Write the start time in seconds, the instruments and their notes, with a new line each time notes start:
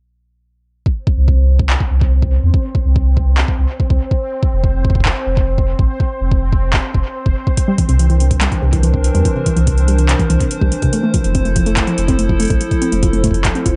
0.86 synth texture C4 C5, kick
1.07 kick
1.17 sub bass C2
1.28 kick
1.59 kick
1.70 clap
1.80 kick
1.91 sub bass C2
2.01 kick
2.22 kick
2.43 sub bass E2
2.54 kick
2.75 kick
2.85 sub bass C2
2.96 kick
3.17 kick
3.38 clap
3.48 kick
3.59 sub bass C2
3.80 kick
3.90 sub bass C2, kick
4.11 kick
4.43 kick
4.53 sub bass F1
4.64 kick
4.85 kick
4.90 kick
4.95 kick
5.00 kick
5.05 kick, clap
5.26 sub bass F1
5.37 kick
5.58 kick
5.79 sub bass A1, kick
6.00 kick
6.21 sub bass F1
6.32 kick
6.53 kick
6.73 kick, clap
6.94 sub bass F1, kick
7.26 sub bass F1, kick
7.47 kick
7.57 ambient pad E3 D4 A#4 C5, kick, closed hi-hat
7.68 synth arpeggio sound G3
7.78 synth arpeggio sound E3, kick, closed hi-hat
7.89 sub bass C2, synth arpeggio sound C3, closed hi-hat
7.99 synth arpeggio sound E3, closed hi-hat
8.10 synth arpeggio sound E3, closed hi-hat
8.20 synth arpeggio sound C3, closed hi-hat
8.31 kick, closed hi-hat
8.41 synth arpeggio sound G3, clap, closed hi-hat
8.52 synth arpeggio sound E3, kick, closed hi-hat
8.62 sub bass C2, synth arpeggio sound C3
8.73 synth arpeggio sound E3, kick, closed hi-hat
8.83 synth arpeggio sound E3, closed hi-hat
8.94 synth arpeggio sound C3, kick
9.04 closed hi-hat
9.15 sub bass E2, synth arpeggio sound G3, closed hi-hat
9.25 synth arpeggio sound E3, kick, closed hi-hat
9.36 synth arpeggio sound C3
9.46 synth arpeggio sound E3, kick, closed hi-hat
9.56 sub bass C2, synth arpeggio sound E3, closed hi-hat
9.67 synth arpeggio sound C3, kick, closed hi-hat
9.78 closed hi-hat
9.88 synth arpeggio sound G3, closed hi-hat
9.98 synth arpeggio sound E3, closed hi-hat
10.09 synth arpeggio sound C3, clap, closed hi-hat
10.19 synth arpeggio sound E3, kick, closed hi-hat
10.30 sub bass C2, synth arpeggio sound E3, closed hi-hat
10.40 synth arpeggio sound C3, kick, closed hi-hat
10.51 closed hi-hat
10.61 sub bass C2, synth arpeggio sound G3, kick
10.72 synth arpeggio sound E3, closed hi-hat
10.82 synth arpeggio sound C3, kick, closed hi-hat
10.93 ambient pad F3 E4 A4, synth arpeggio sound A3, closed hi-hat
11.03 synth arpeggio sound A3
11.14 synth arpeggio sound F3, kick, closed hi-hat
11.24 sub bass F1, closed hi-hat
11.35 synth arpeggio sound C4, kick, closed hi-hat
11.45 synth arpeggio sound A3, closed hi-hat
11.56 synth arpeggio sound F3, kick, closed hi-hat
11.66 synth arpeggio sound A3, closed hi-hat
11.77 synth arpeggio sound A3, kick, clap, closed hi-hat
11.87 synth arpeggio sound F3, closed hi-hat
11.98 sub bass F1, closed hi-hat
12.08 synth arpeggio sound C4, kick, closed hi-hat
12.19 synth arpeggio sound A3, closed hi-hat
12.29 synth arpeggio sound F3, kick
12.40 synth arpeggio sound A3, closed hi-hat
12.42 closed hi-hat
12.50 sub bass A1, synth arpeggio sound A3, kick, closed hi-hat
12.61 synth arpeggio sound F3, closed hi-hat
12.71 kick, closed hi-hat
12.82 synth arpeggio sound C4, closed hi-hat
12.92 sub bass F1, synth arpeggio sound A3, closed hi-hat
13.03 synth arpeggio sound F3, kick, closed hi-hat
13.13 synth arpeggio sound A3, closed hi-hat
13.24 synth arpeggio sound A3, kick, closed hi-hat
13.27 kick
13.31 synth arpeggio sound F3, kick, closed hi-hat
13.45 kick, clap, closed hi-hat
13.55 synth arpeggio sound C4, closed hi-hat
13.66 sub bass F1, synth arpeggio sound F4, kick, closed hi-hat